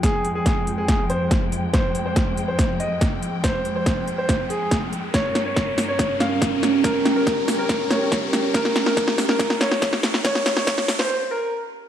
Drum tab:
HH |x-x-x-x-x-x-x-x-|x-x-x-x-x-x-x-x-|x-x-x-x-x-x-x-x-|x-x-x-o-x-x-x-x-|
SD |o---o---o---o---|o---o---o---o---|o---o---o---o---|o-o-o-o-o-o-o-o-|
BD |o---o---o---o---|o---o---o---o---|o---o---o---o---|o---o---o---o---|

HH |x-x-x-o-x-x-x-x-|x-x-x-o-x-x-x-x-|x-x-x-o---------|
SD |o-o-o-o-o-o-o-o-|oooooooooooooooo|oooooooo--------|
BD |o---o---o---o---|o---o---o---o---|o---o-----------|